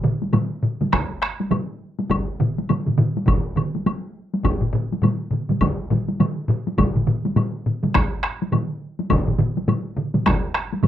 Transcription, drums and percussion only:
0.04 taiko low-mid, taiko mid
0.22 taiko high
0.33 taiko low-mid, taiko mid, taiko high, high woodblock
0.63 taiko low-mid, taiko mid
0.81 taiko low-mid, taiko mid, taiko high
0.92 taiko rim, taiko, taiko high, high woodblock
1.22 taiko rim, high woodblock
1.40 taiko high
1.51 taiko low-mid, taiko mid, taiko high, high woodblock
1.99 taiko high
2.10 taiko, taiko high, high woodblock
2.40 taiko low-mid, taiko mid
2.58 taiko high
2.69 taiko low-mid, taiko mid, taiko high, high woodblock
2.86 taiko low-mid, taiko mid
2.98 taiko low-mid, taiko mid
3.17 taiko high
3.27 taiko, taiko low-mid, taiko mid, taiko high, high woodblock
3.56 taiko low-mid, taiko mid, high woodblock
3.75 taiko high
3.86 taiko high, high woodblock
4.34 taiko high
4.43 taiko, taiko low-mid, taiko mid, taiko high, high woodblock
4.61 taiko low-mid, taiko mid
4.73 taiko low-mid, taiko mid
4.92 taiko high
5.02 taiko low-mid, taiko mid, taiko high, high woodblock
5.31 taiko low-mid, taiko mid
5.49 taiko low-mid, taiko mid, taiko high
5.61 taiko, taiko high, high woodblock
5.90 taiko low-mid, taiko mid, taiko high
6.08 taiko high
6.20 taiko low-mid, taiko mid, taiko high, high woodblock
6.48 taiko low-mid, taiko mid
6.67 taiko high
6.78 taiko, taiko low-mid, taiko mid, taiko high, high woodblock
6.96 taiko low-mid, taiko mid
7.07 taiko low-mid, taiko mid
7.25 taiko high
7.36 taiko low-mid, taiko mid, taiko high, high woodblock
7.66 taiko low-mid, taiko mid
7.83 taiko low-mid, taiko mid, taiko high
7.95 taiko rim, taiko, taiko high, high woodblock
8.23 taiko rim, high woodblock
8.42 taiko high
8.52 taiko low-mid, taiko mid, taiko high, high woodblock
8.99 taiko high
9.10 taiko, taiko low-mid, taiko mid, taiko high, high woodblock
9.27 taiko low-mid, taiko mid
9.39 taiko low-mid, taiko mid
9.57 taiko high
9.68 taiko low-mid, taiko mid, taiko high, high woodblock
9.97 taiko low-mid, taiko mid
10.14 taiko low-mid, taiko mid, taiko high
10.26 taiko rim, taiko, taiko high, high woodblock
10.54 taiko rim, high woodblock
10.72 taiko high
10.83 taiko low-mid, taiko mid, taiko high, high woodblock

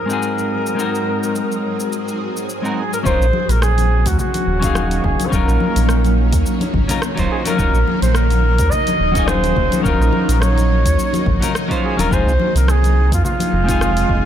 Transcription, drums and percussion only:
0.10 cabasa
0.23 cabasa
0.38 cabasa
0.66 cabasa
0.79 cabasa
0.95 cabasa
1.23 cabasa
1.36 cabasa
1.52 cabasa
1.80 cabasa
1.93 cabasa
2.08 cabasa
2.37 cabasa
2.50 cabasa
2.65 cabasa
2.93 cabasa
3.05 kick, cabasa
3.22 cabasa
3.33 high conga
3.49 open hi-hat, cabasa
3.62 cross-stick, cabasa
3.78 open hi-hat, high conga, cabasa
4.06 kick, open hi-hat, cabasa
4.19 low conga, cabasa
4.34 open hi-hat, high conga, cabasa
4.62 kick, open hi-hat, cabasa
4.75 cross-stick, high conga, cabasa
4.91 open hi-hat, cabasa
5.04 kick, low conga
5.20 open hi-hat, high conga, cabasa
5.32 kick, cabasa
5.48 cross-stick, cabasa
5.60 high conga
5.76 open hi-hat, cabasa
5.89 cross-stick, cabasa
6.04 open hi-hat, high conga, cabasa
6.33 kick, open hi-hat, cabasa
6.46 cabasa
6.61 open hi-hat, high conga, cabasa
6.74 kick
6.89 open hi-hat, low conga, cabasa
7.02 cross-stick, high conga, cabasa
7.18 kick, open hi-hat, cabasa
7.45 open hi-hat, high conga, cabasa
7.59 kick, cabasa
7.75 cabasa
7.88 high conga
8.02 open hi-hat, cabasa
8.15 cross-stick, cabasa
8.30 open hi-hat, high conga, cabasa
8.59 kick, open hi-hat, cabasa
8.72 low conga, cabasa
8.87 open hi-hat, high conga, cabasa
9.15 kick, open hi-hat, cabasa
9.28 cross-stick, high conga, cabasa
9.44 open hi-hat, cabasa
9.56 kick, low conga
9.72 open hi-hat, high conga, cabasa
9.85 kick, cabasa
10.01 cross-stick, cabasa
10.13 high conga
10.29 open hi-hat, cabasa
10.42 cross-stick, cabasa
10.58 open hi-hat, high conga, cabasa
10.85 kick, open hi-hat, cabasa
10.99 cabasa
11.13 open hi-hat, high conga, cabasa
11.26 kick
11.42 open hi-hat, low conga, cabasa
11.55 cross-stick, high conga, cabasa
11.70 kick, open hi-hat, cabasa
11.99 open hi-hat, high conga, cabasa
12.11 kick, cabasa
12.29 cabasa
12.40 high conga
12.56 open hi-hat, cabasa
12.68 cross-stick, cabasa
12.83 open hi-hat, high conga, cabasa
13.12 kick, open hi-hat, cabasa
13.25 low conga, cabasa
13.40 open hi-hat, high conga, cabasa
13.69 kick, open hi-hat, cabasa
13.81 cross-stick, high conga, cabasa
13.97 open hi-hat, cabasa
14.09 kick, low conga

